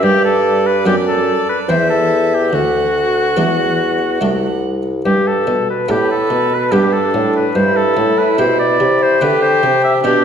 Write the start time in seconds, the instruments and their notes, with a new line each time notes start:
0.03 bassoon G2, harpsichord G2, oboe G4, violin D5
0.25 oboe A4
0.67 oboe B4
0.86 harpsichord F#2 B3 D4, bassoon F#2, oboe G4
1.07 oboe A4
1.49 oboe B4
1.68 bassoon E2, harpsichord E2 C4 E4, oboe C5, violin E5
1.90 oboe A4
2.34 oboe G4
2.52 bassoon D2, harpsichord D2, oboe F#4, violin F#5
3.37 bassoon E2, harpsichord E2 A3 D4 A4
4.21 bassoon C2, harpsichord C2 A3 D4 A4
5.05 bassoon G2, harpsichord G2, oboe G4
5.27 oboe A4
5.47 harpsichord B2, bassoon B2
5.70 oboe B4
5.88 harpsichord A2 B3 D4 G4, bassoon A2, oboe G4, violin B4
6.11 oboe A4
6.30 harpsichord B2, bassoon B2
6.54 oboe B4
6.72 harpsichord G2 B3 D4 G4, bassoon G2, violin D4, oboe G4
6.93 oboe A4
7.14 bassoon A2, harpsichord A2
7.36 oboe B4
7.55 harpsichord G2, bassoon G2, violin E4, oboe C5
7.76 oboe A4
7.97 harpsichord A2, bassoon A2
8.18 oboe B4
8.38 harpsichord B2 C4 E4 G4, bassoon B2, oboe C5
8.59 oboe D5
8.80 harpsichord C3, bassoon C3
9.03 oboe C5
9.21 harpsichord D3 C4 E4 G4, bassoon D3, violin G4, oboe B4
9.42 oboe C5
9.63 bassoon C3, harpsichord C3
9.84 oboe E5
10.04 bassoon B2, harpsichord B2 D4 G4, violin D4, oboe G4